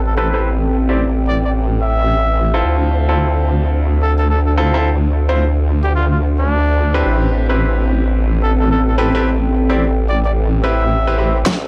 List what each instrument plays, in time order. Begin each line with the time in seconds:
Already playing: wobble bass A1, grand piano C4 E4 G4 B4, ambient pad C4 A4 G5
0.07 trumpet A4
0.17 grand piano C4 E4 G4 B4, trumpet A4
0.34 grand piano C4 E4 G4 B4, trumpet A4
0.89 grand piano C4 E4 G4 D5
1.28 trumpet D5
1.44 trumpet D5
1.82 trumpet E5
2.54 grand piano C4 E4 F4 A4
2.64 wobble bass D2, ambient pad D4
3.09 grand piano C4 E4 F4 A4
4.02 trumpet A4
4.18 trumpet A4
4.30 trumpet A4
4.46 trumpet A4
4.58 grand piano C4 E4 F4 A4
4.74 grand piano C4 E4 F4 A4
5.29 grand piano C4 E4 F4 C5
5.83 trumpet G4
5.95 trumpet F4
6.11 trumpet F4
6.39 trumpet D4
6.94 grand piano C4 E4 G4 B4
7.05 wobble bass A1, ambient pad C4
7.49 grand piano C4 E4 G4 B4
7.82 ambient pad A4
8.43 trumpet A4
8.60 trumpet A4, ambient pad G5
8.71 trumpet A4
8.87 trumpet A4
8.98 grand piano C4 E4 G4 B4, trumpet A4
9.15 grand piano C4 E4 G4 B4, trumpet A4
9.70 grand piano C4 E4 G4 D5
10.09 trumpet D5
10.25 trumpet D5
10.63 grand piano C4 E4 G4 B4, trumpet E5
11.07 grand piano C4 E4 G4 B4
11.18 grand piano C4 E4 G4 B4
11.45 wobble bass D2, ambient pad D4, kick, snare, closed hi-hat, riser